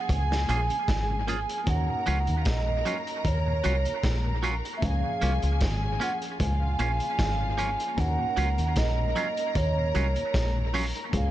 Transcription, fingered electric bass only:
0.10 0.46 C#2 loud
0.49 0.69 A#1 loud
0.89 1.45 G#1 medium
1.67 1.87 D#2 loud
2.08 2.27 C#2 loud
2.29 2.45 D#2 medium
2.46 2.82 A#1 medium
3.25 3.61 D#2 loud
3.66 3.84 C2 medium
4.04 4.60 A#1 medium
4.83 5.02 C#2 loud
5.23 5.42 C2 loud
5.43 5.63 C#2 medium
5.62 5.98 G#1 loud
6.40 6.76 C#2 loud
6.80 6.99 A#1 loud
7.19 7.76 G#1 loud
7.98 8.17 D#2 loud
8.37 8.57 C#2 loud
8.59 8.75 D#2 medium
8.77 9.13 A#1 medium
9.56 9.92 D#2 loud
9.96 10.15 C2 loud
10.35 10.91 A#1 medium
11.13 11.31 C#2 loud

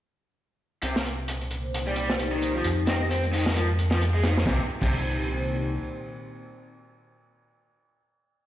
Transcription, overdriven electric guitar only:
0.83 0.95 C3 medium
1.87 1.95 G3 medium
1.97 2.09 G3 medium
2.32 2.54 D#3 loud
2.55 2.65 F3 medium
2.88 3.00 C4 medium
3.10 3.23 C4 medium
3.33 3.43 D#3 medium
3.56 3.66 F3 medium
3.92 3.99 F3 medium
4.14 4.23 G#3 loud
4.24 4.34 D#3 loud
4.47 4.61 C3 medium
4.82 4.94 C3 medium

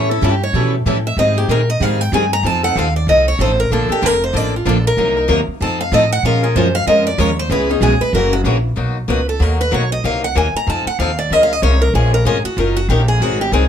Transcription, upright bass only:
0.00 0.21 A2 medium
0.22 0.53 G2 medium
0.53 0.84 B2 medium
0.86 1.16 A2 medium
1.17 1.48 G#2 medium
1.48 1.79 A#2 medium
1.80 2.11 G#2 medium
2.12 2.42 G2 medium
2.43 2.74 F2 medium
2.76 3.06 D#2 medium
3.07 3.38 C2 medium
3.39 3.70 A1 medium
3.70 3.88 A#1 medium
3.89 muted upright bass stroke soft
4.02 4.33 F1 medium
4.33 4.64 A1 medium
4.65 4.96 A#1 medium
4.97 5.28 C2 medium
5.29 5.46 D#2 loud
5.48 muted upright bass stroke soft
5.61 5.91 F2 medium
5.92 6.22 A2 loud
6.23 6.54 A#2 medium
6.55 6.86 F#2 medium
6.87 7.18 F2 medium
7.18 7.49 D#2 medium
7.50 7.80 C#2 medium
7.81 7.99 B1 loud
8.00 muted upright bass stroke soft
8.13 8.44 F#1 medium
8.44 8.76 A#1 medium
8.77 9.08 B1 medium
9.08 9.39 C#2 medium
9.40 9.71 D#2 medium
9.72 10.03 B1 medium
10.04 10.35 C2 medium
10.36 10.53 D#2 medium
10.54 muted upright bass stroke soft
10.67 10.84 F2 medium
10.85 muted upright bass stroke soft
10.99 11.30 D#2 loud
11.30 11.61 C#2 medium
11.62 11.93 C2 medium
11.94 12.25 A#1 medium
12.25 12.43 G#1 medium
12.44 muted upright bass stroke soft
12.57 12.88 F#1 medium
12.89 13.20 A#1 loud
13.20 13.51 G#1 medium
13.52 13.68 C2 medium

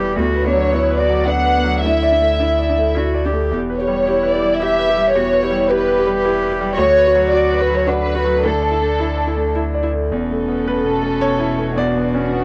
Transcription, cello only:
0.00 0.18 G4 medium
0.19 0.48 F#4 medium
0.46 0.75 D4 medium
0.74 1.01 E4 medium
1.00 1.29 F#4 medium
1.27 1.84 D4 medium
1.84 2.34 E4 medium
2.40 2.98 E4 medium
2.97 3.27 F#4 medium
3.25 3.53 G4 soft
4.07 4.63 E4 medium
4.62 5.17 G4 medium
5.15 5.45 F#4 medium
5.43 5.72 E4 medium
5.70 6.78 G4 medium
6.78 7.89 F#4 medium
7.87 8.16 D4 medium
8.14 8.42 F#4 medium
8.42 9.80 D4 soft
10.13 12.44 B2 medium

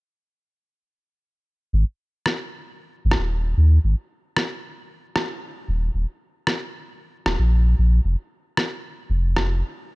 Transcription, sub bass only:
1.73 1.84 G#1 medium
3.05 3.16 G#1 medium
3.18 3.54 D#1 medium
3.57 3.79 D#2 medium
3.84 3.94 G#1 medium
5.68 5.89 D#1 loud
5.94 6.05 D#1 medium
7.26 7.36 D#1 medium
7.39 7.74 A#1 medium
7.79 8.00 A#1 medium
8.05 8.15 F1 medium
9.10 9.63 F1 medium

